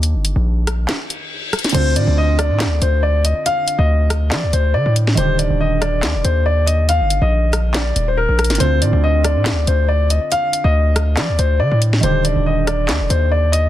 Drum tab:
CC |--------------------------------|x-------------------------------|--------------------------------|--------------------------------|
HH |x---x-------x---x---x-------xxxx|x---x-------x---x---x-------x---|x---x-------x---x---x-------x---|x---x-------x---x---x-------x---|
CP |----------------x---------------|----------------x---------------|----------------x---------------|----------------x---------------|
SD |------------r---o-----------r-o-|------------r---o---------------|------------r---o-------------o-|------------r---o---------------|

CC |--------------------------------|--------------------------------|--------------------------------|--------------------------------|
HH |x---x-------x---x---x-------xxxx|x---x-------x---x---x-------x---|x---x-------x---x---x-------x---|x---x-------x---x---x-------x---|
CP |----------------x---------------|----------------x---------------|----------------x---------------|----------------x---------------|
SD |------------r---o-----------r-o-|------------r---o---------------|------------r---o-------------o-|------------r---o---------------|